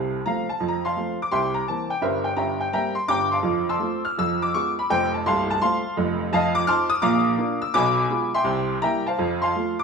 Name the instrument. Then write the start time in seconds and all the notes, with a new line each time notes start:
upright piano
Already playing: C2 C3 A4 C5
0.26 F3 A3 C4 F5 A#5
0.49 A5
0.60 F2 F3
0.68 A#5
0.85 F5 A5 C6
0.97 F3 A3 C4
1.22 D6
1.31 C2 C3 E5 G5 C6
1.54 A#5
1.68 E3 A#3 C4 A5
1.90 G5
2.02 G1 G2 A#4 C5 E5
2.24 G5
2.36 G1 G2 E5 G5 A#5
2.60 G5
2.73 G3 A#3 C4 E5 G5 A#5
2.95 C6
3.08 G1 G2 G5 A#5 D6
3.31 F5 A5 C6
3.43 F2 F3
3.69 A5 C6 E6
3.80 A3 C4 F4
4.05 F6
4.18 F2 F3 E6
4.42 D6
4.54 G#3 B3 F4 C#6
4.79 B5
4.90 F1 F2 C5 G5
5.14 A5
5.26 C1 C2 F5 A5 C6
5.50 A5
5.61 A3 C4 F4 F5 A5 C6
5.97 F1 F2
6.33 F2 F3 D#5 F5 A5
6.55 D6
6.67 C4 D#4 F4 A5 C6 F6
6.90 D#6
7.02 A#1 A#2 F5 A#5 D6
7.38 A#3 D4 F4
7.62 E6
7.74 B1 B2 G#5 B5 D6
8.10 G#3 B3 F4
8.34 E5 G5 C6
8.44 C2 C3
8.82 G3 A#3 E4 E5 G5 A#5
9.06 C5 F5 A5
9.18 F2 F3
9.42 F5 A5 C6
9.55 F3 A3 F4
9.79 D6